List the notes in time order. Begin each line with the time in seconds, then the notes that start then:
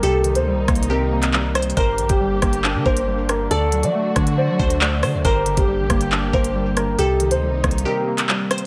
Already playing: A#3
0.03 C2 C3 D#4 G4 A4, closed hi-hat
0.24 D#3, closed hi-hat
0.35 D2 C5, closed hi-hat
0.47 G3
0.52 C2
0.68 C2 A#3, kick, cross-stick, closed hi-hat
0.75 closed hi-hat
0.83 closed hi-hat
0.90 C4 G4 A#4
1.12 A#3
1.23 clap, closed hi-hat
1.33 G3, clap
1.55 C5, cross-stick, closed hi-hat
1.62 closed hi-hat
1.70 closed hi-hat
1.77 G1 G2 D3 A#3 G4 A#4 C5, kick, closed hi-hat
1.98 A#1 D3, closed hi-hat
2.09 G1 G4, kick, closed hi-hat
2.20 G3
2.42 G1 A#3, kick, cross-stick, closed hi-hat
2.53 closed hi-hat
2.64 D4, clap
2.75 D3
2.86 G1 A#3 A#4 C5, kick
2.97 closed hi-hat
3.08 G3
3.29 A#4, cross-stick, closed hi-hat
3.51 D2 D3 A3 F#4 A4 D5, closed hi-hat
3.72 F#3, closed hi-hat
3.83 F#3 D5, closed hi-hat
3.95 A3
4.16 D3 D4, kick, cross-stick, closed hi-hat
4.27 closed hi-hat
4.38 C5 D5
4.49 F#3
4.59 D2 D4 C5, kick
4.70 closed hi-hat
4.81 A3 D5, clap
5.03 D3 C5, cross-stick, open hi-hat
5.14 D2
5.25 G1 G2 A#3 G4 A#4 C5, kick, closed hi-hat
5.46 D3, closed hi-hat
5.57 G1 G4, kick, closed hi-hat
5.68 G3
5.79 A1
5.90 G1 A#3, kick, cross-stick, closed hi-hat
6.01 closed hi-hat
6.12 D4, clap
6.33 G1 A#3 A#4 C5, kick
6.44 closed hi-hat
6.55 G3
6.77 A#4, cross-stick, closed hi-hat
6.99 C2 C3 D#4 G4 A4, closed hi-hat
7.20 D#3, closed hi-hat
7.31 D2 C5, closed hi-hat
7.43 G3
7.48 C2
7.64 C2 A#3, kick, cross-stick, closed hi-hat
7.71 closed hi-hat
7.78 closed hi-hat
7.85 C4 G4 A#4
8.07 A#3
8.18 clap, closed hi-hat
8.29 G3, clap
8.51 C5, cross-stick, closed hi-hat
8.58 closed hi-hat